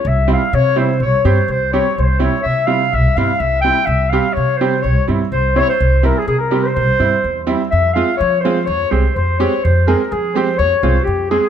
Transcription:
<<
  \new Staff \with { instrumentName = "Clarinet" } { \time 4/4 \tempo 4 = 125 e''8 f''8 des''8 c''8 des''8 c''8 c''8 des''8 | c''8 des''8 e''8 f''8 e''8 f''8 e''8 g''8 | e''8 f''8 des''8 c''8 des''8 r8 c''8 des''16 c''16~ | c''8 bes'16 aes'16 aes'16 bes'8 c''16 c''4. r8 |
e''8 f''8 des''8 c''8 des''8 c''8 c''8 des''8 | c''8 bes'8 aes'8 c''8 des''16. des''32 c''8 g'8 aes'8 | }
  \new Staff \with { instrumentName = "Accordion" } { \time 4/4 e''8 f''8 des''8 c''8 des''4 c''8 des''8 | c''8 des''8 e''8 f''8 e''8 f''8 e''8 g''8 | e''8 f''8 des''8 c''8 des''8 r8 c''8 des''16 c''16~ | c''8 bes'16 aes'16 aes'16 bes'8 c''16 c''4. r8 |
e''4 des''8 c''8 des''8 c''8 c''4 | c''8 bes'8 aes'8 c''8 des''4 g'8 aes'8 | }
  \new Staff \with { instrumentName = "Upright piano" } { \time 4/4 r8 <g c' e'>16 r8. <g c' e'>16 r8. <g c' g'>16 r8. <g c' g'>16 r16 | r8 <g c' e'>16 r8. <g c' e'>16 r8. <g c' e'>16 r8. <g c' e'>16 r16 | r8 <g c' g'>16 r8. <g c' g'>16 r8. <g c' e'>16 r8. <g c' e'>16 r16 | r8 <g c' e'>16 r8. <g c' g'>16 r8. <g c' e'>16 r8. <g c' e'>16 r16 |
r8 <aes c' f'>16 r8. <aes c' f'>16 r8. <aes c' g'>16 r8. <aes c' g'>16 r16 | r8 <aes c' aes'>16 r8. <aes c' g'>16 r8. <aes c' f'>16 r8. <aes c' aes'>16 r16 | }
  \new Staff \with { instrumentName = "Upright bass" } { \clef bass \time 4/4 c,4 c4 c,8 g,8 c,4 | c,4 c4 c,8 g,8 c,4 | c,4 c4 c,8 g,8 c,4 | c,4 c4 c,8 g,8 e,4 |
f,4 f4 f,8 c,8 f,4 | f,4 f4 f,8 c,8 f,4 | }
>>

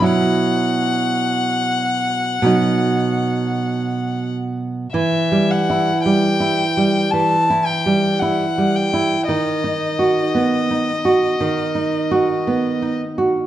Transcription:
<<
  \new Staff \with { instrumentName = "Violin" } { \time 4/4 \key b \phrygian \tempo 4 = 55 fis''2.~ fis''8 r8 | e''8 fis''8 g''4 a''8 g''8 fis''8 g''8 | dis''2.~ dis''8 r8 | }
  \new Staff \with { instrumentName = "Nylon-string guitar" } { \time 4/4 \key b \phrygian <b, fis e'>2 <b, fis dis'>2 | \tuplet 3/2 { e8 g8 e'8 g8 e'8 g8 e8 e'8 g8 e'8 g8 e'8 } | \tuplet 3/2 { dis8 dis'8 fis'8 b8 dis'8 fis'8 dis8 dis'8 fis'8 b8 dis'8 fis'8 } | }
>>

